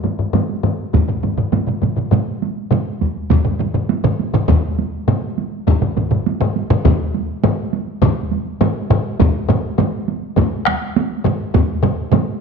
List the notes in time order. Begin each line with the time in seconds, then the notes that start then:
0.04 taiko low-mid, taiko high
0.19 taiko low-mid, taiko high
0.33 taiko low-mid, taiko high
0.49 taiko high
0.63 taiko low-mid, taiko high
0.79 taiko high
0.93 taiko, taiko low-mid, taiko mid, taiko high
1.08 taiko low-mid, taiko mid, taiko high
1.23 taiko low-mid, taiko mid, taiko high
1.38 taiko low-mid, taiko mid, taiko high
1.52 taiko low-mid, taiko mid, taiko high
1.67 taiko low-mid, taiko mid, taiko high
1.82 taiko low-mid, taiko mid, taiko high
1.96 taiko low-mid, taiko mid, taiko high
2.11 taiko low-mid, taiko mid, taiko high
2.28 taiko high
2.42 taiko high
2.57 taiko high
2.71 taiko low-mid, taiko mid, taiko high
3.01 taiko, taiko high
3.16 taiko high
3.30 taiko, taiko low-mid, taiko mid, taiko high
3.45 taiko low-mid, taiko mid, taiko high
3.59 taiko low-mid, taiko mid, taiko high
3.74 taiko low-mid, taiko mid
3.89 taiko high
4.04 taiko low-mid, taiko mid, taiko high
4.19 taiko high
4.34 taiko low-mid, taiko mid, taiko high
4.48 taiko, taiko low-mid, taiko mid, taiko high
4.65 taiko high
4.79 taiko high
5.08 taiko low-mid, taiko mid, taiko high
5.24 taiko high
5.38 taiko high
5.53 taiko high
5.67 taiko, taiko low-mid, taiko mid, taiko high
5.82 taiko low-mid, taiko mid, taiko high
5.97 taiko low-mid, taiko mid, taiko high
6.11 taiko low-mid, taiko mid, taiko high
6.26 taiko high
6.41 taiko low-mid, taiko mid, taiko high
6.56 taiko high
6.70 taiko low-mid, taiko mid, taiko high
6.85 taiko, taiko low-mid, taiko mid, taiko high
7.00 taiko high
7.14 taiko high
7.44 taiko low-mid, taiko mid, taiko high
7.58 taiko high
7.73 taiko high
7.88 taiko high
8.02 taiko, taiko low-mid, taiko mid, taiko high
8.17 taiko high
8.31 taiko high
8.46 taiko high
8.61 taiko low-mid, taiko mid, taiko high
8.76 taiko high
8.90 taiko low-mid, taiko mid, taiko high
9.05 taiko high
9.20 taiko, taiko low-mid, taiko mid, taiko high
9.34 taiko high
9.49 taiko low-mid, taiko mid, taiko high
9.78 taiko low-mid, taiko mid, taiko high
9.93 taiko high
10.08 taiko high
10.23 taiko high
10.36 taiko, taiko low-mid, taiko mid, taiko high
10.53 taiko high
10.65 taiko rim, taiko high
10.82 taiko high
10.96 taiko high
11.11 taiko high
11.24 taiko low-mid, taiko mid, taiko high
11.40 taiko high
11.54 taiko, taiko low-mid, taiko mid, taiko high
11.69 taiko high
11.83 taiko low-mid, taiko mid, taiko high
12.12 taiko low-mid, taiko mid, taiko high
12.28 taiko high